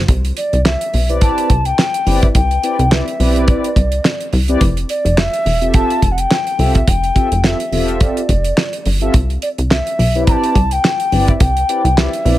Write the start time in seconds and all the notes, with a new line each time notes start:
0.08 C2, kick, closed hi-hat
0.25 closed hi-hat
0.37 D5, closed hi-hat
0.53 C2, closed hi-hat
0.65 E5, snare, clap
0.81 closed hi-hat
0.93 B1 B4 D5, open hi-hat
1.09 C4 E4 G4 B4 D5, closed hi-hat
1.21 A5, kick, closed hi-hat
1.38 closed hi-hat
1.50 C2, kick, closed hi-hat
1.65 G5, closed hi-hat
1.79 snare, clap
1.94 closed hi-hat
2.06 G1 C4 E4 G4 B4 D5, open hi-hat
2.22 E5, kick, closed hi-hat
2.35 C2 G5, kick, closed hi-hat
2.50 B4 D5, closed hi-hat
2.63 C4 E4 G4 B4 D5, closed hi-hat
2.79 C2, closed hi-hat
2.91 C4 E4 G4 B4 D5 E5, snare, clap
3.08 closed hi-hat
3.20 B1 C4 E4 G4 B4 D5, open hi-hat
3.36 closed hi-hat
3.48 D5, kick, closed hi-hat
3.64 closed hi-hat
3.76 C2, kick, closed hi-hat
3.92 closed hi-hat
4.05 snare, clap
4.20 closed hi-hat
4.33 C2, open hi-hat
4.48 C4 E4 G4 B4 D5, closed hi-hat
4.61 F1, kick, closed hi-hat
4.77 closed hi-hat
4.89 D5, closed hi-hat
5.05 F1, closed hi-hat
5.18 E5, snare, clap
5.33 closed hi-hat
5.45 E1 A4, open hi-hat
5.61 C4 F4 G4 A4 E5, closed hi-hat
5.74 A5, kick, closed hi-hat
5.90 closed hi-hat
6.02 F1, kick, closed hi-hat
6.12 F#5
6.18 G5, closed hi-hat
6.31 snare, clap
6.47 closed hi-hat
6.58 C2 C4 F4 G4 A4 E5, open hi-hat
6.75 E5, kick, closed hi-hat
6.88 F1 G5, kick, closed hi-hat
7.03 A4 E5, closed hi-hat
7.15 C4 F4 G4 A4 E5, kick, closed hi-hat
7.31 F1, closed hi-hat
7.43 C4 F4 G4 A4 E5, snare, clap
7.60 closed hi-hat
7.72 E1 C4 F4 G4 A4 E5, open hi-hat
7.88 closed hi-hat
8.00 D5, kick, closed hi-hat
8.17 closed hi-hat
8.29 F1, kick, closed hi-hat
8.44 closed hi-hat
8.57 snare, clap
8.73 closed hi-hat
8.86 G1, open hi-hat
9.01 C4 F4 G4 A4 E5, closed hi-hat
9.14 C2, kick, closed hi-hat
9.30 closed hi-hat
9.42 D5, closed hi-hat
9.58 C2, closed hi-hat
9.71 E5, snare, clap
9.87 closed hi-hat
9.99 B1 B4 D5, open hi-hat
10.15 C4 E4 G4 B4 C#5, closed hi-hat
10.22 D5
10.27 A#5, kick, closed hi-hat
10.32 A5
10.44 closed hi-hat
10.55 C2, kick, closed hi-hat
10.71 G5, closed hi-hat
10.85 snare, clap
11.00 closed hi-hat
11.12 G1 C4 E4 G4 B4 D5, open hi-hat
11.28 E5, kick, closed hi-hat
11.40 C2 G5, kick, closed hi-hat
11.56 B4 D5, closed hi-hat
11.69 C4 E4 G4 B4 D5, closed hi-hat
11.84 C2, closed hi-hat
11.97 C4 E4 G4 B4 D5 E5, snare, clap
12.13 closed hi-hat
12.25 B1 C4 E4 G4 B4 D5, open hi-hat